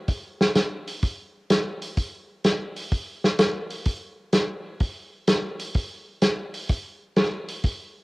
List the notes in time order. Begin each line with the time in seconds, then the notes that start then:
0.08 kick, open hi-hat
0.41 snare
0.55 snare, closed hi-hat
0.87 open hi-hat
1.03 kick, open hi-hat
1.50 snare, closed hi-hat
1.82 open hi-hat
1.97 kick, open hi-hat
2.44 snare, closed hi-hat
2.76 open hi-hat
2.91 kick, open hi-hat
3.24 snare
3.39 snare, closed hi-hat
3.70 open hi-hat
3.86 kick, open hi-hat
4.33 snare, closed hi-hat
4.80 kick, open hi-hat
5.27 snare, closed hi-hat
5.59 open hi-hat
5.74 kick, open hi-hat
6.22 snare, closed hi-hat
6.54 open hi-hat
6.69 kick, open hi-hat
7.16 snare, closed hi-hat
7.49 open hi-hat
7.64 kick, open hi-hat